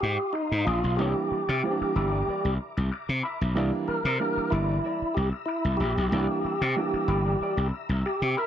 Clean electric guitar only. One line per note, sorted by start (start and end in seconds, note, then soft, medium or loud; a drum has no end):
0.02 muted clean electric guitar stroke soft
0.18 muted clean electric guitar stroke soft
0.34 muted clean electric guitar stroke soft
0.67 0.80 D#4 medium
0.67 0.80 G#4 medium
0.67 0.81 D5 medium
0.99 1.20 E4 medium
0.99 1.17 A#4 medium
0.99 1.16 D5 medium
1.17 muted clean electric guitar stroke soft
1.32 muted clean electric guitar stroke soft
1.49 1.61 E4 medium
1.49 1.61 A#4 medium
1.49 1.60 D5 medium
1.64 muted clean electric guitar stroke soft
1.82 muted clean electric guitar stroke medium
1.96 2.09 E4 medium
1.96 2.09 A#4 medium
1.96 2.10 D5 medium
2.12 2.25 E4 soft
2.12 2.25 A#4 medium
2.12 2.24 D5 medium
2.28 2.58 E4 medium
2.28 2.58 A#4 medium
2.28 2.59 D5 medium
2.60 muted clean electric guitar stroke soft
2.77 muted clean electric guitar stroke soft
2.92 muted clean electric guitar stroke medium
3.23 3.37 E4 medium
3.23 3.37 A#4 medium
3.23 3.37 E5 medium
3.42 muted clean electric guitar stroke soft
3.56 3.73 E4 medium
3.56 3.73 A#4 medium
3.56 3.72 D5 loud
3.73 muted clean electric guitar stroke soft
3.89 muted clean electric guitar stroke soft
4.06 4.18 E4 medium
4.06 4.18 A#4 medium
4.06 4.17 D5 medium
4.22 muted clean electric guitar stroke soft
4.38 muted clean electric guitar stroke soft
4.53 4.66 E4 medium
4.53 4.66 A#4 medium
4.53 4.66 D5 medium
4.69 4.82 E4 medium
4.69 4.81 A#4 medium
4.69 4.81 D5 medium
4.84 5.14 E4 medium
4.84 5.15 A#4 medium
4.84 5.15 D5 medium
5.16 muted clean electric guitar stroke soft
5.33 muted clean electric guitar stroke soft
5.48 muted clean electric guitar stroke soft
5.81 5.93 E4 medium
5.81 5.94 A#4 medium
5.81 5.94 E5 medium
5.98 muted clean electric guitar stroke soft
6.12 6.29 E4 medium
6.12 6.29 A#4 medium
6.12 6.29 D5 medium
6.30 muted clean electric guitar stroke soft
6.45 muted clean electric guitar stroke soft
6.62 6.74 E4 soft
6.62 6.74 A#4 medium
6.62 6.73 D5 medium
6.76 muted clean electric guitar stroke soft
6.94 muted clean electric guitar stroke soft
7.08 7.22 E4 medium
7.08 7.22 A#4 medium
7.08 7.23 D5 medium
7.26 7.39 E4 medium
7.26 7.38 A#4 medium
7.26 7.38 D5 medium
7.41 7.71 E4 medium
7.41 7.72 A#4 medium
7.41 7.72 D5 loud
7.73 muted clean electric guitar stroke soft
7.91 muted clean electric guitar stroke medium
8.06 muted clean electric guitar stroke soft
8.37 8.47 E4 medium
8.37 8.47 A#4 medium
8.37 8.47 E5 medium